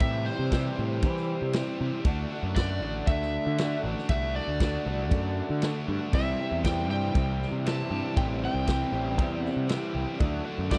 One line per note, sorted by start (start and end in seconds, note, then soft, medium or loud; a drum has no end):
0.00 0.30 A2 loud
0.00 0.50 C3 loud
0.00 0.51 E3 loud
0.00 2.01 G3 medium
0.00 0.28 G3 loud
0.00 2.01 C4 medium
0.00 0.26 C4 medium
0.00 2.01 E4 medium
0.00 0.26 G4 loud
0.00 2.01 C5 medium
0.00 0.24 E5 loud
0.00 kick loud
0.00 ride bell medium
0.26 0.52 G3 medium
0.26 0.52 C4 medium
0.26 0.52 G4 medium
0.26 1.75 C5 medium
0.39 0.68 C3 medium
0.51 1.03 C3 loud
0.51 1.03 E3 loud
0.51 0.78 G3 loud
0.51 0.78 C4 loud
0.51 0.76 G4 loud
0.51 kick medium
0.51 snare loud
0.51 ride bell medium
0.78 1.04 A2 medium
0.78 1.54 G3 medium
0.78 1.55 C4 medium
0.78 1.55 G4 medium
1.02 1.55 C3 medium
1.02 1.32 E3 medium
1.02 1.54 E3 medium
1.02 1.55 G3 medium
1.02 1.55 C4 medium
1.02 1.55 G4 loud
1.02 kick loud
1.02 ride bell medium
1.17 snare soft
1.42 1.61 C3 medium
1.53 2.03 E3 medium
1.53 1.80 G3 medium
1.53 1.78 C4 medium
1.53 1.77 G4 medium
1.53 snare loud
1.53 ride bell medium
1.78 1.90 C3 medium
1.78 2.04 G3 medium
1.78 2.04 C4 medium
1.78 2.03 G4 medium
2.05 2.24 D2 loud
2.05 2.55 D3 medium
2.05 6.09 A3 medium
2.05 2.32 A3 medium
2.05 6.09 D4 medium
2.05 2.31 D4 loud
2.05 6.09 F#4 medium
2.05 2.30 F#4 loud
2.05 6.09 D5 medium
2.05 kick loud
2.05 ride bell medium
2.30 2.57 A3 medium
2.30 2.57 D4 medium
2.30 2.58 F#4 medium
2.43 2.81 F#2 medium
2.56 3.58 D3 loud
2.56 2.83 A3 medium
2.56 2.82 D4 loud
2.56 2.81 F#4 loud
2.56 3.08 D5 medium
2.56 kick medium
2.56 snare loud
2.56 ride bell medium
2.81 3.00 A1 medium
2.81 3.58 A3 medium
2.81 3.58 D4 medium
2.81 3.59 F#4 medium
3.07 3.36 D2 medium
3.07 3.57 D3 medium
3.07 3.59 A3 medium
3.07 3.59 D4 medium
3.07 3.59 F#4 medium
3.07 3.80 E5 loud
3.07 kick loud
3.07 ride bell medium
3.22 snare soft
3.46 3.75 D3 medium
3.58 4.08 D3 medium
3.58 3.85 A3 medium
3.58 3.84 D4 medium
3.58 3.83 F#4 medium
3.58 snare loud
3.58 ride bell medium
3.84 3.93 A1 medium
3.84 4.09 A3 medium
3.84 4.10 D4 medium
3.84 4.10 F#4 medium
3.98 snare soft
4.09 4.39 C2 loud
4.09 4.59 D3 medium
4.09 4.37 A3 medium
4.09 4.36 D4 loud
4.09 4.35 F#4 loud
4.09 4.33 E5 loud
4.09 kick loud
4.09 ride bell medium
4.36 4.60 A3 medium
4.36 4.61 D4 medium
4.36 4.61 F#4 medium
4.36 5.84 D5 medium
4.48 4.77 D2 medium
4.60 5.11 D3 loud
4.60 4.87 A3 medium
4.60 4.85 D4 loud
4.60 4.85 F#4 loud
4.60 kick medium
4.60 snare loud
4.60 ride bell medium
4.86 5.11 C2 medium
4.86 5.62 A3 medium
4.86 5.63 D4 medium
4.86 5.63 F#4 medium
5.11 5.40 F#2 medium
5.11 5.60 D3 medium
5.11 5.62 A3 medium
5.11 5.63 D4 medium
5.11 5.63 F#4 loud
5.11 kick loud
5.11 ride bell medium
5.50 5.69 D3 medium
5.62 6.12 D3 medium
5.62 5.89 A3 medium
5.62 5.87 D4 medium
5.62 5.86 F#4 medium
5.62 snare loud
5.62 ride bell medium
5.87 5.98 G2 medium
5.87 6.12 A3 medium
5.87 6.12 D4 medium
5.87 6.11 F#4 medium
6.13 6.33 C2 loud
6.13 6.63 C3 medium
6.13 6.64 E3 medium
6.13 6.41 G3 medium
6.13 10.17 C4 medium
6.13 6.40 C4 medium
6.13 10.17 E4 medium
6.13 6.37 E4 medium
6.13 10.17 G4 medium
6.13 6.39 G4 medium
6.13 10.17 E5 medium
6.13 6.61 E5 medium
6.13 kick loud
6.13 crash loud
6.37 6.65 C4 medium
6.37 6.65 E4 medium
6.37 6.65 G4 medium
6.41 6.65 G3 medium
6.52 6.89 E2 medium
6.64 8.15 C3 medium
6.64 7.65 E3 medium
6.64 6.91 G3 medium
6.64 6.90 C4 loud
6.64 6.89 E4 medium
6.64 6.89 G4 loud
6.64 6.89 G5 medium
6.64 kick medium
6.64 snare loud
6.64 ride bell medium
6.89 7.09 G2 medium
6.89 7.65 G3 medium
6.89 7.65 C4 medium
6.89 7.16 E4 medium
6.89 7.66 G4 medium
6.89 7.69 G5 loud
7.14 7.44 C2 medium
7.14 7.64 C3 medium
7.14 7.66 C3 medium
7.14 7.64 E3 medium
7.14 7.65 G3 loud
7.14 7.66 G3 medium
7.14 7.66 C4 medium
7.14 7.66 C4 loud
7.14 7.67 E4 loud
7.14 7.67 G4 medium
7.14 kick loud
7.14 ride bell medium
7.42 snare soft
7.52 7.82 C3 medium
7.65 8.15 C3 medium
7.65 8.15 E3 medium
7.65 7.92 G3 medium
7.65 7.91 C4 medium
7.65 7.89 E4 medium
7.65 7.90 G4 medium
7.65 8.17 A5 loud
7.65 snare loud
7.65 ride bell medium
7.91 8.01 G2 medium
7.91 8.16 G3 medium
7.91 8.16 C4 medium
7.91 8.18 E4 medium
7.91 8.17 G4 medium
8.16 8.46 A1 loud
8.16 8.65 C3 medium
8.16 8.65 E3 medium
8.16 8.43 G3 medium
8.16 8.41 C4 loud
8.16 8.41 E4 loud
8.16 8.40 G4 loud
8.16 8.24 G5 loud
8.16 kick loud
8.16 ride bell medium
8.41 8.66 G3 medium
8.41 8.67 C4 medium
8.41 8.69 E4 medium
8.41 8.67 G4 medium
8.41 9.40 G5 medium
8.54 8.84 C2 medium
8.66 9.18 C3 loud
8.66 9.18 E3 loud
8.66 8.94 G3 medium
8.66 8.92 C4 medium
8.66 8.91 G4 loud
8.66 kick medium
8.66 snare loud
8.66 ride bell medium
8.70 8.91 E4 medium
8.92 9.18 A1 medium
8.92 9.68 G3 medium
8.92 9.68 C4 medium
8.92 9.20 E4 medium
8.92 9.69 G4 medium
9.17 9.47 E2 medium
9.17 9.67 C3 medium
9.17 9.69 C3 medium
9.17 9.66 E3 loud
9.17 9.68 G3 loud
9.17 9.68 G3 medium
9.17 9.69 C4 loud
9.17 9.70 C4 loud
9.17 9.69 G4 medium
9.17 kick loud
9.17 ride bell medium
9.21 9.70 E4 medium
9.40 9.92 F#5 medium
9.45 snare soft
9.56 9.76 C3 medium
9.68 10.18 C3 medium
9.68 10.18 E3 medium
9.68 9.95 G3 medium
9.68 9.94 C4 medium
9.68 9.92 E4 medium
9.68 9.93 G4 medium
9.68 snare loud
9.68 ride bell medium
9.94 10.05 C2 medium
9.94 10.19 G3 medium
9.94 10.19 C4 medium
9.94 10.18 E4 medium
9.94 10.18 G4 medium
10.19 10.40 D2 loud
10.19 10.69 D3 loud
10.19 10.47 F#3 medium
10.19 10.45 A3 medium
10.19 10.78 A3 medium
10.19 10.45 D4 loud
10.19 10.78 D4 medium
10.19 10.78 F#4 medium
10.19 10.43 F#4 medium
10.19 10.78 D5 medium
10.19 kick loud
10.19 ride bell medium
10.45 10.70 F#3 medium
10.45 10.70 A3 medium
10.45 10.72 D4 medium
10.45 10.71 F#4 medium
10.58 10.78 F#2 medium
10.71 10.78 D3 loud
10.71 10.78 F#3 medium
10.71 10.78 A3 loud
10.71 10.78 D4 loud
10.71 10.78 F#4 loud
10.71 10.78 D5 loud
10.71 kick medium
10.71 snare loud
10.71 ride bell medium